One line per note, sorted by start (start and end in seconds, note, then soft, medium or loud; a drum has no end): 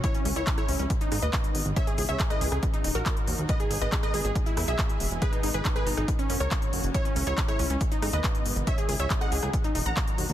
0.00 2.60 G#2 medium
0.00 0.88 C#3 medium
0.00 0.89 E3 medium
0.00 0.88 C#4 medium
0.00 0.89 E4 medium
0.00 0.14 E4 medium
0.00 0.13 C#5 loud
0.00 0.14 C#5 loud
0.00 kick loud
0.00 closed hi-hat medium
0.14 0.24 C#4 medium
0.14 closed hi-hat medium
0.25 0.32 C#2 medium
0.25 0.35 C#4 medium
0.25 open hi-hat loud
0.36 0.43 C#2 medium
0.36 0.46 E4 medium
0.36 0.46 C#5 medium
0.36 closed hi-hat medium
0.47 0.57 C#4 medium
0.47 kick loud
0.47 clap loud
0.47 closed hi-hat medium
0.58 0.67 E4 medium
0.58 0.67 C#5 medium
0.58 0.68 C#5 loud
0.58 cross-stick medium
0.58 closed hi-hat medium
0.68 0.75 C#2 medium
0.68 0.78 C#4 medium
0.68 open hi-hat loud
0.79 0.86 C#2 medium
0.79 0.89 C#4 medium
0.79 closed hi-hat medium
0.90 1.76 B2 medium
0.90 1.76 D#3 medium
0.90 1.76 B3 medium
0.90 1.76 D#4 medium
0.90 kick loud
0.90 closed hi-hat medium
1.01 1.11 D#4 medium
1.01 closed hi-hat soft
1.12 1.19 G#2 medium
1.12 1.21 D#4 medium
1.12 cross-stick medium
1.12 open hi-hat loud
1.22 1.29 D#2 medium
1.22 1.68 B4 medium
1.22 1.68 D#5 medium
1.22 1.68 D#5 loud
1.22 closed hi-hat soft
1.33 kick loud
1.33 clap loud
1.33 closed hi-hat medium
1.44 closed hi-hat medium
1.55 1.62 G#1 medium
1.55 open hi-hat loud
1.66 1.72 G#1 medium
1.66 closed hi-hat soft
1.76 2.62 C#3 medium
1.76 2.62 E3 medium
1.76 2.62 C#4 medium
1.76 2.62 E4 medium
1.76 1.86 C#5 medium
1.76 1.86 E5 loud
1.76 kick loud
1.76 closed hi-hat medium
1.87 1.97 G#4 medium
1.87 closed hi-hat soft
1.98 2.05 C#2 medium
1.98 2.08 G#4 medium
1.98 open hi-hat loud
2.09 2.16 C#2 medium
2.09 2.18 C#5 medium
2.09 2.18 E5 medium
2.09 2.19 E5 medium
2.09 closed hi-hat medium
2.20 2.29 G#4 medium
2.20 kick loud
2.20 clap loud
2.20 closed hi-hat medium
2.30 2.40 B4 medium
2.30 2.40 D#5 loud
2.30 cross-stick medium
2.30 closed hi-hat medium
2.41 2.48 C#2 medium
2.41 2.51 G#4 medium
2.41 open hi-hat loud
2.52 2.59 C#2 medium
2.52 2.62 G#4 medium
2.52 cross-stick medium
2.52 closed hi-hat soft
2.63 3.48 A#2 medium
2.63 4.34 D#3 medium
2.63 3.48 F#3 medium
2.63 4.34 D#4 medium
2.63 3.48 F#4 medium
2.63 kick loud
2.63 closed hi-hat medium
2.74 2.83 D#4 medium
2.74 closed hi-hat soft
2.84 2.91 D#1 medium
2.84 2.94 D#4 medium
2.84 open hi-hat loud
2.95 3.02 A#1 medium
2.95 3.40 F#4 medium
2.95 3.40 A#4 loud
2.95 3.40 A#4 medium
2.95 closed hi-hat soft
3.06 kick loud
3.06 clap loud
3.06 closed hi-hat medium
3.17 closed hi-hat soft
3.27 3.34 D#2 medium
3.27 open hi-hat loud
3.38 3.45 D#2 medium
3.38 closed hi-hat soft
3.49 4.34 B2 medium
3.49 6.06 G#3 medium
3.49 6.06 G#4 medium
3.49 3.59 B4 medium
3.49 3.59 D#5 loud
3.49 kick loud
3.49 closed hi-hat medium
3.60 3.70 G#4 medium
3.60 3.69 G#4 medium
3.60 closed hi-hat soft
3.71 3.78 G#1 medium
3.71 3.80 G#4 medium
3.71 open hi-hat loud
3.81 3.88 G#1 medium
3.81 3.91 B4 medium
3.81 3.91 D#5 medium
3.81 closed hi-hat medium
3.92 4.02 G#4 medium
3.92 kick loud
3.92 clap loud
3.92 closed hi-hat medium
4.03 4.13 B4 medium
4.03 4.13 D#5 loud
4.03 cross-stick medium
4.03 closed hi-hat soft
4.14 4.21 G#1 medium
4.14 4.24 G#4 medium
4.14 open hi-hat medium
4.25 4.31 G#1 medium
4.25 4.34 G#4 medium
4.25 closed hi-hat medium
4.36 5.21 B2 medium
4.36 5.21 E3 medium
4.36 5.21 E4 medium
4.36 kick loud
4.36 closed hi-hat medium
4.46 4.56 E4 medium
4.46 closed hi-hat soft
4.57 4.64 E2 medium
4.57 4.67 E4 medium
4.57 cross-stick medium
4.57 open hi-hat loud
4.68 4.75 B1 medium
4.68 5.13 G#4 medium
4.68 5.13 E5 loud
4.68 5.13 E5 medium
4.68 closed hi-hat medium
4.79 kick loud
4.79 clap loud
4.79 closed hi-hat medium
4.89 closed hi-hat medium
5.00 5.07 E1 medium
5.00 open hi-hat medium
5.11 5.18 E1 medium
5.11 closed hi-hat medium
5.22 6.07 B2 medium
5.22 6.07 D#3 medium
5.22 6.07 D#4 medium
5.22 5.32 G#4 medium
5.22 5.32 B4 loud
5.22 kick loud
5.22 closed hi-hat medium
5.33 5.42 D#4 medium
5.33 closed hi-hat medium
5.43 5.50 G#1 medium
5.43 5.53 D#4 medium
5.43 open hi-hat loud
5.54 5.61 G#1 medium
5.54 5.64 G#4 medium
5.54 5.64 B4 medium
5.54 closed hi-hat medium
5.65 5.75 D#4 medium
5.65 kick loud
5.65 clap loud
5.65 closed hi-hat medium
5.76 5.85 G#4 medium
5.76 5.85 B4 medium
5.76 5.86 B4 loud
5.76 cross-stick medium
5.76 closed hi-hat medium
5.86 5.93 G#1 loud
5.86 5.96 D#4 medium
5.86 open hi-hat medium
5.97 6.04 G#1 medium
5.97 6.07 D#4 medium
5.97 cross-stick medium
5.97 closed hi-hat medium
6.08 6.94 A#2 medium
6.08 7.79 C#3 medium
6.08 6.94 F#3 medium
6.08 7.79 C#4 medium
6.08 6.94 F#4 medium
6.08 kick loud
6.08 closed hi-hat medium
6.19 6.29 C#4 medium
6.19 closed hi-hat medium
6.29 6.37 F#2 medium
6.29 6.39 C#4 medium
6.29 open hi-hat loud
6.40 6.47 C#2 medium
6.40 6.86 A#4 medium
6.40 6.86 C#5 loud
6.40 6.86 C#5 medium
6.40 closed hi-hat medium
6.51 kick loud
6.51 clap loud
6.51 closed hi-hat medium
6.62 closed hi-hat medium
6.73 6.80 F#1 medium
6.73 open hi-hat medium
6.84 6.90 F#1 medium
6.84 closed hi-hat medium
6.94 9.51 G#2 medium
6.94 7.80 E3 medium
6.94 7.04 E4 medium
6.94 7.80 E4 medium
6.94 7.04 C#5 loud
6.94 kick loud
6.94 closed hi-hat medium
7.05 7.15 C#4 medium
7.05 closed hi-hat medium
7.16 7.23 C#2 medium
7.16 7.26 C#4 medium
7.16 open hi-hat loud
7.27 7.34 C#2 medium
7.27 7.37 E4 medium
7.27 7.36 C#5 medium
7.27 7.37 C#5 medium
7.27 closed hi-hat medium
7.38 7.47 C#4 medium
7.38 kick loud
7.38 clap loud
7.38 closed hi-hat loud
7.48 7.58 E4 medium
7.48 7.58 C#5 medium
7.48 7.58 C#5 loud
7.48 cross-stick medium
7.48 closed hi-hat medium
7.59 7.66 C#2 loud
7.59 7.69 C#4 medium
7.59 open hi-hat medium
7.70 7.77 C#2 medium
7.70 7.80 C#4 medium
7.70 closed hi-hat medium
7.81 8.66 B2 medium
7.81 8.66 D#3 medium
7.81 8.66 B3 medium
7.81 8.66 D#4 medium
7.81 kick loud
7.81 closed hi-hat medium
7.92 8.01 D#4 medium
7.92 closed hi-hat medium
8.02 8.09 G#2 medium
8.02 8.12 D#4 medium
8.02 cross-stick medium
8.02 open hi-hat loud
8.13 8.20 D#2 medium
8.13 8.59 B4 medium
8.13 8.59 D#5 loud
8.13 8.59 D#5 medium
8.13 closed hi-hat medium
8.24 kick loud
8.24 clap loud
8.24 closed hi-hat loud
8.35 closed hi-hat medium
8.46 8.52 G#1 medium
8.46 open hi-hat medium
8.56 8.63 G#1 medium
8.56 closed hi-hat medium
8.67 9.53 C#3 medium
8.67 9.53 E3 medium
8.67 9.53 C#4 medium
8.67 9.53 E4 medium
8.67 8.77 C#5 medium
8.67 8.77 E5 loud
8.67 kick loud
8.67 closed hi-hat loud
8.78 8.88 G#4 medium
8.78 closed hi-hat medium
8.89 8.96 C#2 medium
8.89 8.98 G#4 medium
8.89 8.99 G#4 medium
8.89 open hi-hat loud
8.99 9.06 C#2 medium
8.99 9.09 C#5 medium
8.99 9.09 E5 medium
8.99 closed hi-hat medium
9.10 9.20 G#4 medium
9.10 kick loud
9.10 clap loud
9.10 closed hi-hat loud
9.21 9.31 D#5 medium
9.21 9.31 F#5 medium
9.21 9.31 F#5 loud
9.21 cross-stick medium
9.21 closed hi-hat medium
9.32 9.39 C#2 medium
9.32 9.42 G#4 medium
9.32 open hi-hat medium
9.43 9.49 C#2 medium
9.43 9.52 G#4 medium
9.43 cross-stick medium
9.43 closed hi-hat medium
9.53 10.33 A#2 medium
9.53 10.33 D#3 medium
9.53 10.33 F#3 medium
9.53 10.33 D#4 medium
9.53 10.33 F#4 medium
9.53 kick loud
9.53 closed hi-hat loud
9.64 9.74 D#4 medium
9.64 closed hi-hat medium
9.75 9.82 D#1 medium
9.75 9.85 D#4 medium
9.75 open hi-hat loud
9.86 9.93 A#1 medium
9.86 10.31 F#5 medium
9.86 10.31 A#5 loud
9.86 10.31 A#5 medium
9.86 closed hi-hat medium
9.97 kick loud
9.97 clap loud
9.97 closed hi-hat loud
10.07 closed hi-hat medium
10.18 10.25 D#2 medium
10.18 open hi-hat medium
10.29 10.33 D#2 medium
10.29 closed hi-hat medium